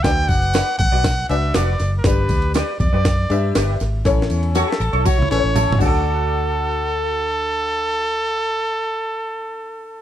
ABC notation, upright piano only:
X:1
M:4/4
L:1/8
Q:1/4=120
K:D
V:1 name="Upright piano"
[DFBd]2 z3 [DFBd]2 z | [DGBd]2 z3 [DGBe]2 z | [CEAc]2 z3 [CEABc]2 [DFA]- | [DFA]8- |
[DFA]8 |]